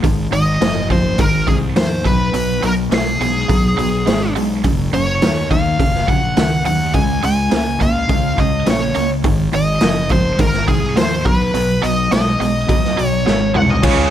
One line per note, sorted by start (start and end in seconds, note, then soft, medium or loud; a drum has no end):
0.04 0.30 G#1 medium
0.04 0.30 G#2 medium
0.04 0.30 D#3 medium
0.04 kick medium
0.04 open hi-hat medium
0.31 0.58 G#1 medium
0.31 0.58 G#2 medium
0.31 0.59 D#3 medium
0.31 0.87 D#5 loud
0.31 open hi-hat soft
0.61 1.15 F#1 medium
0.61 0.87 G#2 medium
0.61 0.88 F3 medium
0.61 snare loud
0.61 open hi-hat medium
0.90 1.16 G#2 medium
0.90 1.16 F3 medium
0.90 1.21 C5 medium
0.90 kick medium
0.90 open hi-hat soft
1.18 1.45 G#1 medium
1.18 1.45 G#2 medium
1.18 1.45 D#3 medium
1.18 1.47 A#4 medium
1.18 kick loud
1.18 open hi-hat medium
1.47 1.74 C2 medium
1.47 1.74 G#2 medium
1.47 1.74 D#3 medium
1.47 1.56 G#4 medium
1.47 kick medium
1.47 open hi-hat soft
1.76 2.03 D#2 medium
1.76 2.02 G#2 medium
1.76 2.03 F3 medium
1.76 2.07 C5 medium
1.76 snare loud
1.76 open hi-hat medium
2.05 2.32 B1 medium
2.05 2.31 B2 medium
2.05 2.32 F#3 medium
2.05 2.65 B4 medium
2.05 kick medium
2.05 open hi-hat medium
2.34 2.61 B1 medium
2.34 2.60 B2 medium
2.34 2.60 F#3 medium
2.34 open hi-hat medium
2.62 2.89 B1 medium
2.62 2.88 B2 medium
2.62 2.89 F#3 medium
2.62 2.73 A#4 medium
2.62 open hi-hat soft
2.91 3.18 B1 medium
2.91 3.18 B2 medium
2.91 3.18 G#3 medium
2.91 4.33 G#4 medium
2.91 snare loud
2.91 open hi-hat medium
3.20 3.47 B1 medium
3.20 3.46 B2 medium
3.20 3.47 G#3 medium
3.20 open hi-hat soft
3.49 3.76 B1 medium
3.49 3.75 B2 medium
3.49 3.75 F#3 medium
3.49 kick loud
3.49 open hi-hat medium
3.78 4.04 B1 medium
3.78 4.04 B2 medium
3.78 4.04 F#3 medium
3.78 open hi-hat soft
4.07 4.33 G#1 medium
4.07 4.33 B2 medium
4.07 4.33 G#3 medium
4.07 snare loud
4.07 open hi-hat medium
4.36 4.62 B1 medium
4.36 4.62 B2 medium
4.36 4.62 G#3 medium
4.36 open hi-hat soft
4.64 4.91 F#1 medium
4.64 4.90 F#2 medium
4.64 4.91 C#3 medium
4.64 kick medium
4.64 open hi-hat medium
4.93 5.20 F#1 medium
4.93 5.19 F#2 medium
4.93 5.20 C#3 medium
4.93 5.47 C#5 medium
4.93 open hi-hat soft
5.22 5.76 D#2 medium
5.22 5.48 F#2 medium
5.22 5.48 D#3 medium
5.22 snare loud
5.22 open hi-hat medium
5.51 5.77 F#2 medium
5.51 5.77 D#3 medium
5.51 6.08 F5 medium
5.51 kick medium
5.51 open hi-hat soft
5.79 6.06 F#1 medium
5.79 6.05 F#2 medium
5.79 6.06 C#3 medium
5.79 kick loud
5.79 open hi-hat medium
5.95 snare soft
6.08 6.35 A#1 medium
6.08 6.34 F#2 medium
6.08 6.35 C#3 medium
6.08 6.62 F#5 medium
6.08 kick medium
6.08 open hi-hat soft
6.37 6.64 C#2 medium
6.37 6.63 F#2 medium
6.37 6.63 D#3 medium
6.37 snare loud
6.37 open hi-hat medium
6.65 6.93 D#2 medium
6.65 6.92 F#2 medium
6.65 6.92 D#3 medium
6.65 6.93 F#5 medium
6.65 open hi-hat medium
6.94 7.21 C#2 medium
6.94 7.21 C#3 medium
6.94 7.21 G#3 medium
6.94 7.21 G#5 loud
6.94 kick medium
6.94 open hi-hat medium
7.23 7.50 C#2 medium
7.23 7.50 C#3 medium
7.23 7.50 G#3 medium
7.23 7.82 G#5 loud
7.23 open hi-hat medium
7.51 7.79 C#2 medium
7.51 7.78 C#3 medium
7.51 7.78 A#3 medium
7.51 snare loud
7.51 open hi-hat medium
7.81 8.07 C#2 medium
7.81 8.07 C#3 medium
7.81 8.07 A#3 medium
7.81 8.41 F5 medium
7.81 kick medium
7.81 open hi-hat soft
8.08 8.36 C#2 medium
8.08 8.35 C#3 medium
8.08 8.35 G#3 medium
8.08 kick loud
8.08 open hi-hat medium
8.38 8.65 C#2 medium
8.38 8.64 C#3 medium
8.38 8.64 G#3 medium
8.38 8.69 D#5 medium
8.38 kick medium
8.38 open hi-hat soft
8.66 8.94 A#1 medium
8.66 8.92 C#3 medium
8.66 8.93 A#3 medium
8.66 9.09 C#5 medium
8.66 snare loud
8.66 open hi-hat medium
8.95 9.23 C#2 medium
8.95 9.21 C#3 medium
8.95 9.22 A#3 medium
8.95 open hi-hat soft
9.24 9.51 G#1 medium
9.24 9.50 G#2 medium
9.24 9.50 D#3 medium
9.24 kick loud
9.24 open hi-hat medium
9.52 9.80 G#1 medium
9.52 9.79 G#2 medium
9.52 9.79 D#3 medium
9.52 10.11 D#5 loud
9.52 open hi-hat soft
9.81 10.36 F#1 medium
9.81 10.07 G#2 medium
9.81 10.08 F3 medium
9.81 snare loud
9.81 open hi-hat medium
10.09 10.37 G#2 medium
10.09 10.37 F3 medium
10.09 10.38 C5 medium
10.09 kick medium
10.09 open hi-hat soft
10.39 10.66 G#1 medium
10.39 10.65 G#2 medium
10.39 10.65 D#3 medium
10.39 10.67 A#4 medium
10.39 kick loud
10.39 open hi-hat medium
10.53 snare soft
10.68 10.94 C2 medium
10.68 10.94 G#2 medium
10.68 10.94 D#3 medium
10.68 10.97 G#4 medium
10.68 kick medium
10.68 open hi-hat soft
10.96 11.23 D#2 medium
10.96 11.23 G#2 medium
10.96 11.23 F3 medium
10.96 11.26 C5 medium
10.96 snare loud
10.96 open hi-hat medium
11.25 11.52 B1 medium
11.25 11.51 B2 medium
11.25 11.51 F#3 medium
11.25 11.85 B4 medium
11.25 kick loud
11.25 open hi-hat soft
11.54 11.81 B1 medium
11.54 11.80 B2 medium
11.54 11.81 F#3 medium
11.54 open hi-hat medium
11.82 12.10 B1 medium
11.82 12.09 B2 medium
11.82 12.09 F#3 medium
11.82 12.11 D#5 medium
11.82 open hi-hat soft
12.11 12.38 B1 medium
12.11 12.38 B2 medium
12.11 12.38 G#3 loud
12.11 13.07 D#5 medium
12.11 snare loud
12.11 open hi-hat medium
12.40 12.67 B1 medium
12.40 12.66 B2 medium
12.40 12.67 G#3 medium
12.40 open hi-hat medium
12.69 12.96 B1 medium
12.69 12.95 B2 medium
12.69 12.95 F#3 medium
12.69 kick loud
12.69 open hi-hat medium
12.85 snare soft
12.98 13.25 B1 medium
12.98 13.24 B2 medium
12.98 13.24 F#3 medium
12.98 open hi-hat medium
13.07 13.52 C#5 medium
13.26 13.53 G#1 medium
13.26 13.53 B2 medium
13.26 13.53 G#3 medium
13.26 snare soft
13.54 13.82 C2 medium
13.54 13.81 B2 medium
13.54 13.81 G#3 medium
13.54 13.69 F#5 medium
13.54 mid tom medium
13.69 13.84 D#5 medium
13.69 floor tom medium
13.82 14.04 C#2 medium
13.82 14.10 C#3 medium
13.82 14.10 F3 medium
13.82 14.10 G#3 medium
13.82 14.10 C#4 medium
13.82 14.10 C#4 loud
13.82 14.10 F4 medium
13.82 14.10 G#4 medium
13.82 14.10 C#5 medium
13.82 kick loud
13.82 crash loud